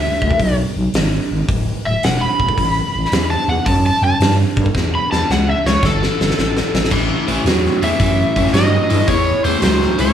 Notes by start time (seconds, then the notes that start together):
Already playing: E5
0.22 D2, kick
0.31 kick
0.39 B1, kick, open hi-hat
0.76 B1
0.94 G#1, snare, open hi-hat
1.31 G#1
1.49 D1, kick, open hi-hat
1.86 D1 E5
2.03 E1 F#5, snare, open hi-hat
2.21 B5
2.39 E1, kick
2.49 kick
2.58 A1, kick, open hi-hat
2.95 A1
3.05 snare
3.12 E2, snare, open hi-hat
3.30 A5
3.48 E2 F#5
3.66 F#2 A5, kick, open hi-hat
3.86 A5
4.02 F#2 A5
4.20 G2, snare, open hi-hat
4.57 G2, kick
4.66 kick
4.74 E2, kick, snare
4.95 B5
5.12 E2 A5, snare
5.30 C#2 F#5, snare
5.50 E5
5.66 C#2 C#5, snare
5.83 G1 A4, kick, snare
6.03 snare
6.20 G1, snare
6.30 snare
6.38 A1, snare
6.57 snare
6.74 A1, snare
6.85 snare
6.91 A1 A2 E3, kick, crash
7.27 A1 A2 E3, open hi-hat
7.45 E2 A2 F#3, snare, open hi-hat
7.66 snare
7.82 E2 A2 E3 E5, open hi-hat
8.00 F#2 A2 E3, kick, open hi-hat
8.36 F#2 A2 E3, kick, open hi-hat
8.47 snare
8.53 G2 A2 F#3 D#5, snare, open hi-hat
8.89 G2 A2 E3, open hi-hat
9.07 E2 A2 E3 C#5, kick, open hi-hat
9.44 E2 A2 E3 C5, open hi-hat
9.61 C#2 A2 F#3 C5, snare, open hi-hat
9.82 snare
9.98 C#2 A2 E3 C#5, open hi-hat